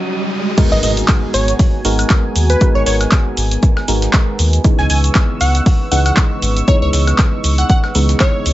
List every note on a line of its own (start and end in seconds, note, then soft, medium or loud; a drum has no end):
0.00 0.54 C#4 medium
0.00 0.54 F#4 medium
0.00 0.54 D#5 medium
0.00 0.59 D#6 medium
0.00 riser medium
0.58 1.82 G#3 medium
0.58 8.53 B3 medium
0.58 1.82 B3 medium
0.58 1.82 D#4 medium
0.58 4.60 F#4 medium
0.58 1.82 F#4 medium
0.58 1.82 A#4 loud
0.58 4.60 G#5 medium
0.58 kick loud
0.58 closed hi-hat medium
0.58 crash loud
0.58 impact medium
0.58 shaker medium
0.58 shaker soft
0.72 0.80 G#1 loud
0.72 0.79 D#5 medium
0.72 snare soft
0.83 1.03 G#1 medium
0.83 0.92 D#5 medium
0.83 open hi-hat loud
0.83 shaker medium
0.97 closed hi-hat medium
0.97 shaker soft
1.08 kick loud
1.08 snare loud
1.08 clap loud
1.08 closed hi-hat medium
1.08 shaker medium
1.08 shaker soft
1.34 1.54 G#1 medium
1.34 1.54 C#5 loud
1.34 open hi-hat loud
1.34 shaker medium
1.48 closed hi-hat soft
1.48 closed hi-hat medium
1.48 shaker soft
1.59 kick loud
1.59 closed hi-hat medium
1.59 open hi-hat medium
1.59 shaker soft
1.85 2.05 G#1 medium
1.85 2.58 G#3 medium
1.85 2.58 B3 medium
1.85 2.58 D#4 medium
1.85 2.58 F#4 medium
1.85 2.58 A#4 medium
1.85 open hi-hat loud
1.85 shaker medium
1.99 closed hi-hat soft
1.99 closed hi-hat medium
1.99 high woodblock medium
1.99 shaker soft
2.10 kick loud
2.10 snare loud
2.10 clap loud
2.10 closed hi-hat medium
2.10 shaker medium
2.10 shaker soft
2.36 2.55 D#2 medium
2.36 open hi-hat loud
2.36 shaker medium
2.50 2.69 B4 loud
2.50 closed hi-hat medium
2.50 shaker soft
2.61 3.85 G#3 medium
2.61 3.85 B3 medium
2.61 3.85 D#4 medium
2.61 3.85 F#4 medium
2.61 3.86 A#4 medium
2.61 kick loud
2.61 closed hi-hat medium
2.61 shaker medium
2.61 shaker soft
2.75 2.84 G#1 loud
2.75 2.82 C#5 medium
2.86 3.06 G#1 medium
2.86 2.96 C#5 medium
2.86 snare soft
2.86 open hi-hat loud
2.86 shaker medium
3.01 snare medium
3.01 closed hi-hat medium
3.01 high woodblock medium
3.01 shaker soft
3.11 kick loud
3.11 snare loud
3.11 clap loud
3.11 closed hi-hat medium
3.11 shaker medium
3.11 shaker soft
3.37 3.57 G#1 medium
3.37 open hi-hat loud
3.37 shaker medium
3.51 closed hi-hat soft
3.51 closed hi-hat medium
3.51 shaker soft
3.63 kick loud
3.63 closed hi-hat medium
3.63 shaker medium
3.63 shaker soft
3.77 snare medium
3.77 high woodblock medium
3.88 4.08 G#1 medium
3.88 4.62 G#3 medium
3.88 4.62 B3 medium
3.88 4.62 D#4 medium
3.88 4.62 F#4 medium
3.88 4.62 A#4 medium
3.88 open hi-hat loud
3.88 shaker medium
4.02 snare soft
4.02 closed hi-hat medium
4.02 shaker soft
4.13 kick loud
4.13 snare loud
4.13 clap loud
4.13 closed hi-hat medium
4.13 shaker medium
4.13 shaker soft
4.39 4.59 D#2 loud
4.39 open hi-hat loud
4.39 shaker medium
4.53 closed hi-hat medium
4.53 shaker soft
4.64 5.89 C#3 medium
4.64 5.89 E3 medium
4.64 5.89 G#3 medium
4.64 5.89 B3 medium
4.64 5.89 D#4 medium
4.64 8.53 C#6 medium
4.64 8.53 E6 medium
4.64 kick loud
4.64 closed hi-hat medium
4.64 shaker medium
4.64 shaker soft
4.79 4.87 C#2 loud
4.79 4.86 G#5 medium
4.79 snare soft
4.90 5.10 C#2 medium
4.90 4.99 G#5 medium
4.90 open hi-hat loud
4.90 shaker medium
5.04 closed hi-hat medium
5.04 shaker soft
5.15 kick loud
5.15 snare loud
5.15 clap loud
5.15 closed hi-hat medium
5.15 shaker medium
5.15 shaker soft
5.41 5.61 C#2 medium
5.41 5.61 F#5 loud
5.41 open hi-hat loud
5.41 shaker medium
5.55 closed hi-hat soft
5.55 closed hi-hat medium
5.55 shaker soft
5.66 kick loud
5.66 closed hi-hat medium
5.66 open hi-hat medium
5.66 shaker soft
5.91 6.11 C#2 medium
5.91 6.65 C#3 medium
5.91 6.65 E3 medium
5.91 6.65 G#3 medium
5.91 6.65 B3 medium
5.91 6.65 D#4 medium
5.91 6.01 F#5 medium
5.91 open hi-hat loud
5.91 shaker medium
6.06 6.13 F#5 medium
6.06 closed hi-hat soft
6.06 closed hi-hat medium
6.06 high woodblock medium
6.06 shaker soft
6.17 kick loud
6.17 snare loud
6.17 clap loud
6.17 closed hi-hat medium
6.17 shaker medium
6.17 shaker soft
6.42 6.62 G#1 loud
6.42 open hi-hat loud
6.42 shaker medium
6.57 closed hi-hat medium
6.57 shaker soft
6.68 7.92 C#3 medium
6.68 7.92 E3 medium
6.68 7.92 G#3 medium
6.68 7.92 B3 medium
6.68 7.92 D#4 medium
6.68 6.77 C#5 medium
6.68 kick loud
6.68 closed hi-hat medium
6.68 shaker medium
6.68 shaker soft
6.82 6.90 C#2 loud
6.82 6.89 C#5 medium
6.93 7.13 C#2 medium
6.93 snare soft
6.93 open hi-hat loud
6.93 shaker medium
7.07 snare soft
7.07 closed hi-hat medium
7.07 high woodblock medium
7.07 shaker soft
7.18 kick loud
7.18 snare loud
7.18 clap loud
7.18 closed hi-hat medium
7.18 shaker medium
7.18 shaker soft
7.44 7.64 C#2 medium
7.44 open hi-hat loud
7.44 shaker medium
7.58 7.65 F#5 medium
7.58 closed hi-hat soft
7.58 closed hi-hat medium
7.58 shaker soft
7.69 7.79 F#5 medium
7.69 kick loud
7.69 closed hi-hat medium
7.69 shaker medium
7.69 shaker soft
7.84 snare medium
7.84 high woodblock medium
7.95 8.15 C#2 loud
7.95 8.53 C#3 medium
7.95 8.53 E3 medium
7.95 8.53 G#3 medium
7.95 8.53 B3 medium
7.95 8.53 D#4 medium
7.95 open hi-hat loud
7.95 shaker medium
8.09 snare soft
8.09 closed hi-hat medium
8.09 shaker soft
8.20 8.53 C#5 loud
8.20 kick loud
8.20 snare loud
8.20 clap loud
8.20 closed hi-hat medium
8.20 shaker medium
8.20 shaker soft
8.46 8.53 C#2 medium
8.46 open hi-hat loud
8.46 shaker medium